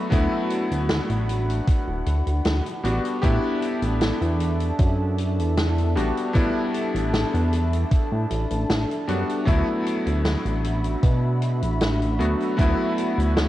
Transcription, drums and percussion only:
0.11 kick loud
0.11 closed hi-hat medium
0.50 closed hi-hat medium
0.71 closed hi-hat medium
0.89 snare loud
0.89 closed hi-hat medium
1.10 closed hi-hat medium
1.29 closed hi-hat medium
1.49 closed hi-hat medium
1.67 kick loud
1.67 closed hi-hat medium
2.06 closed hi-hat medium
2.27 closed hi-hat medium
2.45 snare loud
2.45 closed hi-hat medium
2.66 closed hi-hat medium
2.85 closed hi-hat medium
3.05 closed hi-hat medium
3.23 kick loud
3.23 closed hi-hat medium
3.62 closed hi-hat medium
3.82 closed hi-hat medium
4.01 snare loud
4.01 closed hi-hat medium
4.22 closed hi-hat soft
4.40 closed hi-hat medium
4.61 closed hi-hat medium
4.79 kick loud
4.79 closed hi-hat medium
5.18 closed hi-hat medium
5.39 closed hi-hat medium
5.57 snare loud
5.57 closed hi-hat medium
5.78 closed hi-hat medium
5.97 closed hi-hat medium
6.17 closed hi-hat medium
6.35 kick loud
6.35 closed hi-hat medium
6.74 closed hi-hat medium
6.96 closed hi-hat medium
7.14 snare loud
7.14 closed hi-hat medium
7.34 closed hi-hat soft
7.52 closed hi-hat medium
7.73 closed hi-hat medium
7.91 kick loud
7.91 closed hi-hat medium
8.30 closed hi-hat medium
8.50 closed hi-hat medium
8.70 snare loud
8.70 closed hi-hat medium
8.91 closed hi-hat soft
9.08 closed hi-hat medium
9.29 closed hi-hat medium
9.47 kick loud
9.47 closed hi-hat medium
9.86 closed hi-hat medium
10.07 closed hi-hat medium
10.25 snare loud
10.25 closed hi-hat medium
10.46 closed hi-hat soft
10.64 closed hi-hat medium
10.84 closed hi-hat medium
11.03 kick loud
11.03 closed hi-hat medium
11.42 closed hi-hat medium
11.62 closed hi-hat medium
11.81 snare loud
11.81 closed hi-hat medium
12.02 closed hi-hat soft
12.20 closed hi-hat medium
12.40 closed hi-hat medium
12.59 kick loud
12.59 closed hi-hat medium
12.98 closed hi-hat medium
13.20 closed hi-hat medium
13.37 snare loud
13.37 closed hi-hat medium

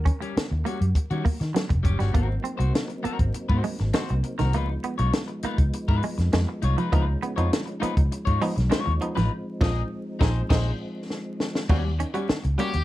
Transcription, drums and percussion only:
0.06 kick medium
0.06 closed hi-hat medium
0.22 closed hi-hat soft
0.37 snare loud
0.37 closed hi-hat loud
0.66 closed hi-hat medium
0.81 closed hi-hat medium
0.95 kick medium
0.95 closed hi-hat medium
1.10 closed hi-hat soft
1.25 kick medium
1.25 open hi-hat medium
1.41 snare soft
1.41 closed hi-hat soft
1.56 snare loud
1.56 closed hi-hat loud
1.70 kick loud
1.70 closed hi-hat soft
1.85 kick medium
1.85 closed hi-hat medium
2.00 snare soft
2.00 closed hi-hat soft
2.14 kick loud
2.14 closed hi-hat medium
2.45 closed hi-hat medium
2.60 closed hi-hat soft
2.75 snare loud
2.75 closed hi-hat medium
2.89 closed hi-hat soft
3.05 closed hi-hat medium
3.19 kick medium
3.19 closed hi-hat soft
3.34 closed hi-hat medium
3.50 kick medium
3.64 open hi-hat medium
3.79 snare soft
3.79 closed hi-hat soft
3.93 snare loud
3.93 closed hi-hat loud
4.09 closed hi-hat soft
4.24 closed hi-hat medium
4.39 snare soft
4.39 closed hi-hat soft
4.53 closed hi-hat medium
4.83 closed hi-hat medium
4.99 closed hi-hat soft
5.13 snare loud
5.13 closed hi-hat loud
5.28 closed hi-hat soft
5.43 closed hi-hat medium
5.58 kick medium
5.58 closed hi-hat medium
5.73 closed hi-hat medium
5.89 kick medium
6.03 open hi-hat medium
6.18 snare soft
6.18 closed hi-hat medium
6.33 snare loud
6.33 closed hi-hat medium
6.62 closed hi-hat medium
6.78 closed hi-hat soft
6.93 kick loud
6.93 closed hi-hat medium
7.23 closed hi-hat medium
7.38 closed hi-hat soft
7.53 snare loud
7.53 closed hi-hat loud
7.67 closed hi-hat soft
7.83 closed hi-hat medium
7.97 kick medium
7.97 closed hi-hat soft
8.12 closed hi-hat medium
8.27 kick medium
8.27 closed hi-hat soft
8.41 open hi-hat medium
8.58 snare soft
8.58 closed hi-hat soft
8.71 snare loud
8.71 closed hi-hat medium
9.02 closed hi-hat medium
9.17 snare soft
9.17 closed hi-hat soft
9.61 kick loud
9.61 snare loud
9.61 crash medium
10.21 kick loud
10.21 snare loud
10.50 kick loud
10.50 snare loud
10.50 crash medium
11.10 snare medium
11.40 snare medium
11.55 snare medium
11.69 kick loud
11.69 crash medium
12.00 closed hi-hat medium
12.14 closed hi-hat soft
12.29 snare loud
12.44 closed hi-hat soft
12.59 closed hi-hat medium
12.74 closed hi-hat medium

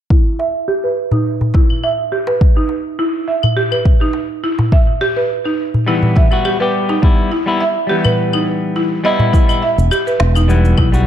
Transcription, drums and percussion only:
0.10 kick loud
0.40 darbuka ka medium
1.11 darbuka dum medium
1.41 darbuka dum medium
1.54 kick medium
1.54 darbuka tek medium
1.70 claves medium
1.83 claves medium
2.27 darbuka tek medium
2.41 kick loud
2.69 darbuka ka medium
3.43 darbuka dum medium
3.43 claves medium
3.71 darbuka ka soft
3.71 claves medium
3.85 kick loud
4.13 darbuka tek medium
4.59 darbuka tek medium
4.59 darbuka dum medium
4.72 kick loud
5.01 darbuka ka medium
5.74 darbuka dum medium
6.03 darbuka dum medium
6.16 kick loud
6.16 darbuka tek medium
6.32 claves soft
6.45 claves medium
6.89 darbuka tek medium
7.03 kick loud
7.32 darbuka ka medium
8.05 darbuka dum medium
8.05 claves medium
8.33 darbuka ka soft
8.33 claves medium
8.76 darbuka tek medium
9.19 darbuka tek medium
9.19 darbuka dum medium
9.34 kick loud
9.34 shaker soft
9.49 claves medium
9.49 shaker soft
9.63 darbuka tek soft
9.79 shaker medium
9.91 claves medium
9.91 shaker soft
10.07 shaker soft
10.20 snare medium
10.35 claves medium
10.35 shaker medium
10.50 shaker soft
10.65 shaker soft
10.78 kick medium
10.78 darbuka tek medium
10.78 claves medium
10.93 darbuka ka medium
10.93 shaker medium

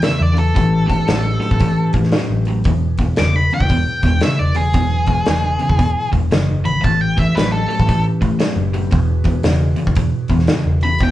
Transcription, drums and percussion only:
0.02 snare medium
0.02 open hi-hat medium
0.37 open hi-hat medium
0.56 kick loud
0.56 open hi-hat medium
0.90 kick medium
0.90 open hi-hat soft
1.08 snare loud
1.08 open hi-hat medium
1.42 open hi-hat soft
1.51 kick medium
1.60 kick medium
1.60 open hi-hat medium
1.93 kick medium
1.93 open hi-hat soft
2.04 snare soft
2.12 snare loud
2.12 open hi-hat medium
2.45 open hi-hat soft
2.64 kick loud
2.64 open hi-hat medium
2.98 kick medium
2.98 open hi-hat soft
3.16 snare medium
3.16 open hi-hat medium
3.51 open hi-hat soft
3.60 kick medium
3.69 kick medium
3.69 open hi-hat medium
4.03 kick medium
4.03 open hi-hat soft
4.21 snare medium
4.21 open hi-hat medium
4.54 open hi-hat medium
4.73 kick medium
4.73 open hi-hat medium
5.06 kick medium
5.06 open hi-hat soft
5.26 snare loud
5.26 open hi-hat medium
5.59 open hi-hat soft
5.70 kick medium
5.79 kick medium
5.79 open hi-hat medium
6.13 kick medium
6.13 open hi-hat soft
6.31 snare loud
6.31 open hi-hat medium
6.65 open hi-hat soft
6.84 kick medium
6.84 open hi-hat medium
7.18 kick medium
7.18 open hi-hat soft
7.37 snare loud
7.37 open hi-hat medium
7.70 open hi-hat soft
7.79 kick medium
7.89 kick medium
7.89 open hi-hat medium
8.22 kick medium
8.22 open hi-hat soft
8.40 snare loud
8.40 open hi-hat medium
8.74 open hi-hat soft
8.91 kick medium
8.91 open hi-hat medium
9.24 kick medium
9.24 open hi-hat soft
9.43 snare loud
9.43 open hi-hat medium
9.77 open hi-hat soft
9.87 kick medium
9.96 kick medium
9.96 open hi-hat medium
10.28 kick medium
10.28 open hi-hat soft
10.39 snare soft
10.47 snare loud
10.47 open hi-hat medium
10.81 open hi-hat soft
10.99 kick medium
10.99 open hi-hat medium

